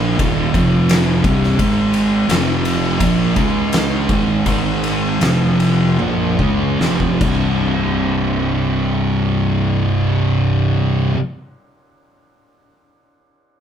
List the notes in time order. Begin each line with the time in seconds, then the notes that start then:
Already playing: A#1 A#2 F3 A#3
0.19 D#1 D#2 A#2 D#3, kick, ride
0.53 F1 F2 C3 F3, kick, ride
0.89 snare, ride
1.24 C1 C2 G2 C3, kick, ride
1.43 snare
1.58 G#1 G#2 D#3 G#3, kick, ride
1.94 ride
2.28 F1 F2 C3 F3, snare, ride
2.65 ride
3.00 A#1 A#2 F3 A#3, kick, ride
3.36 C#2 C#3 G#3 C#4, kick, ride
3.73 snare, ride
4.09 G#1 G#2 D#3 G#3, kick, ride
4.46 G#1 G#2 D#3 G#3, kick, ride
4.84 ride
5.21 F1 F2 C3 F3, snare, ride
5.60 ride
5.99 A#1 A#2 F3 A#3, high tom
6.39 C#2 C#3 G#3 C#4, kick
6.79 F1 F2 C3 F3, snare
7.00 kick
7.20 C1 C2 G2 C3, kick, crash